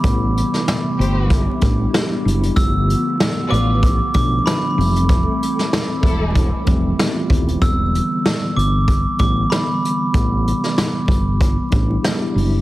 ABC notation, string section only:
X:1
M:4/4
L:1/16
Q:"Swing 16ths" 1/4=95
K:Am
V:1 name="String section"
z6 [A,Gc]3 z6 z | z6 [G,FB]2 z8 | z6 [F,EA]3 z6 z | z16 |
z16 |]